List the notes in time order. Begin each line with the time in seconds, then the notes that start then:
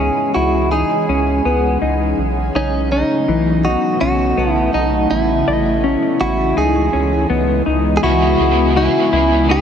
Already playing: C#2 C#3 E3 G#3 C#4 G#4 D#5
0.00 C#4
0.34 C#2 E4 F#4
0.72 D#4 G#4
1.09 C#2 C#4
1.45 C#2 B3 F#5
1.82 C#2 D#4
2.17 B1 C#3 F#3 A3 B3 D#4
2.55 B1 C#4 D#4
2.92 C#4 D#4
3.28 B1 E3
3.65 D#4 F#4
4.01 B1 C#4 F#4
4.37 B1 B3 F#5 A5
4.52 E4
4.74 B1 D#4
5.10 A1 E3 G#3 A3 E4
5.48 A1 D#5
5.82 C#4 E4
6.20 A1 E4 F#4
6.56 C#2 C#3 B3 D#4 G#4 D#5
6.93 C#2 C#4
7.30 C#2 B3
7.66 C#2 D#4
7.97 G#4
8.02 C#2 C#3 E3 G#3 B3 C#4 E4 F#4 G#4
8.39 C#2 B3 E4 G#4
8.75 C#3 G#3 B3 E4 F#4 G#4 G#5
9.00 B5
9.12 C#2 B3 E4 G#4
9.48 G#3 B3 D#4 E4 G#4